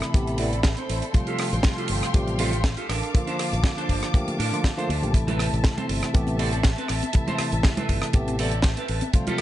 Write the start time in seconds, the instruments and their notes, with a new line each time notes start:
Already playing: tine electric piano C3 E3 A3 E4, string section A4 E5 B5
0.02 cross-stick, closed hi-hat
0.14 fingered electric bass A1, tine electric piano C3 E3 A3 B3 G4, kick, closed hi-hat
0.27 closed hi-hat
0.38 tine electric piano C3 E3 A3 B3 E4, clean electric guitar C4 A4 D5, open hi-hat
0.53 closed hi-hat
0.63 kick, snare, closed hi-hat
0.77 clean electric guitar C4 A4 C5, closed hi-hat
0.89 fingered electric bass A1, open hi-hat
1.02 closed hi-hat
1.13 tine electric piano C3 F3 G3 A3 F4, string section F5 G5 C6, kick, closed hi-hat
1.27 clean electric guitar F4 G4 A4, closed hi-hat
1.39 cross-stick, open hi-hat
1.52 fingered electric bass A1, closed hi-hat
1.63 kick, snare, closed hi-hat
1.78 clean electric guitar F4 G4 A4, closed hi-hat
1.88 fingered electric bass G1, open hi-hat
2.03 cross-stick, closed hi-hat
2.14 fingered electric bass A1, tine electric piano C3 F3 G3 A3 G4, kick, closed hi-hat
2.27 closed hi-hat
2.39 tine electric piano C3 F3 G3 A3 F4, clean electric guitar F4 G4 A4, open hi-hat
2.53 closed hi-hat
2.64 kick, snare, closed hi-hat
2.77 clean electric guitar F4 G4 A4, closed hi-hat
2.89 fingered electric bass A1, clean electric guitar D4 A4 A#4, string section A5 D6, cross-stick, open hi-hat
3.03 closed hi-hat
3.14 tine electric piano D3 F3 A#3 F4, kick, closed hi-hat
3.27 clean electric guitar D4 A4 C5, closed hi-hat
3.39 cross-stick, open hi-hat
3.53 fingered electric bass A1, closed hi-hat
3.64 muted clean electric guitar stroke, kick, snare, closed hi-hat
3.77 clean electric guitar D4 A4 C5, closed hi-hat
3.89 fingered electric bass G1, kick, open hi-hat
4.03 cross-stick, closed hi-hat
4.14 tine electric piano D3 F3 A3 A#3 G4, kick, closed hi-hat
4.28 muted fingered electric bass stroke, closed hi-hat
4.39 fingered electric bass A2, clean electric guitar D4 A4 A#4, open hi-hat
4.53 tine electric piano D3 F3 A3 A#3 F4, closed hi-hat
4.64 kick, snare, closed hi-hat
4.77 tine electric piano D3 F3 A3 A#3 F4, clean electric guitar D4 A4 C5, closed hi-hat
4.89 fingered electric bass D2, open hi-hat
5.02 fingered electric bass A1, tine electric piano D3 F3 A3 A#3 G4, closed hi-hat
5.13 tine electric piano C3 E3 A3 E4, string section E5, kick, closed hi-hat
5.27 clean electric guitar C4 A4 B4, closed hi-hat, low conga
5.39 cross-stick, open hi-hat, high conga
5.53 fingered electric bass A1, closed hi-hat
5.64 kick, snare, closed hi-hat
5.77 clean electric guitar C4 A4 C5, closed hi-hat, low conga
5.89 fingered electric bass G1, open hi-hat
6.03 cross-stick, closed hi-hat
6.14 fingered electric bass A1, tine electric piano C3 E3 A3 B3 G4, kick, closed hi-hat
6.27 closed hi-hat, high conga
6.39 tine electric piano C3 E3 A3 B3 E4, clean electric guitar C4 A4 D5, open hi-hat
6.53 closed hi-hat
6.63 kick, snare, closed hi-hat
6.78 clean electric guitar C4 A4 B4, closed hi-hat
6.88 fingered electric bass A1, cross-stick, open hi-hat
7.03 closed hi-hat, high conga
7.13 tine electric piano C3 E3 A3 E4, kick, closed hi-hat
7.27 clean electric guitar C4 A4 C5, closed hi-hat, low conga
7.38 cross-stick, open hi-hat, high conga
7.52 fingered electric bass A1, closed hi-hat
7.63 muted clean electric guitar stroke, kick, snare, closed hi-hat
7.77 clean electric guitar C4 A4 B4, closed hi-hat, low conga
7.89 fingered electric bass G1, kick, open hi-hat
8.02 cross-stick, closed hi-hat
8.13 fingered electric bass A1, tine electric piano C3 E3 A3 B3 G4, kick, closed hi-hat
8.28 closed hi-hat, high conga
8.39 tine electric piano C3 E3 A3 B3 E4, clean electric guitar C4 A4 D5, open hi-hat
8.52 closed hi-hat
8.62 kick, snare, closed hi-hat
8.77 clean electric guitar C4 A4 B4, closed hi-hat
8.88 fingered electric bass A1, open hi-hat
9.01 closed hi-hat, high conga
9.13 tine electric piano C3 F3 G3 A3 F4, string section A4 F5 G5, kick, closed hi-hat
9.27 clean electric guitar F4 G4 A4, closed hi-hat, low conga
9.38 open hi-hat